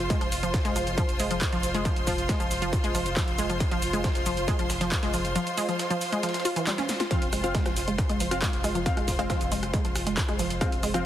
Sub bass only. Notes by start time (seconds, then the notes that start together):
0.21 F1
0.32 F1
0.43 F1
0.65 F1
0.76 F1
0.87 F1
1.09 F1
1.20 F1
1.31 F1
1.53 F1
1.63 F1
1.74 F1
1.96 F1
2.07 F1
2.18 F1
2.40 F1
2.51 F1
2.62 F1
2.84 F1
2.95 F1
3.06 F1
3.28 F1
3.38 F1
3.49 F1
3.71 F1
3.82 F1
3.93 F1
4.15 F1
4.26 F1
4.37 F1
4.59 F1
4.70 F1
4.81 F1
5.03 F1
5.14 F1
5.25 F1
7.22 F1
7.33 F1
7.44 F1
7.66 F1
7.77 F1
7.88 F1
8.10 F1
8.20 F1
8.31 F1
8.53 F1
8.64 F1
8.75 F1
8.97 F1
9.08 F1
9.19 F1
9.41 F1
9.52 F1
9.63 F1
9.85 F1
9.95 F1
10.07 F1
10.28 F1
10.39 F1
10.50 F1
10.72 F1
10.83 F1
10.94 F1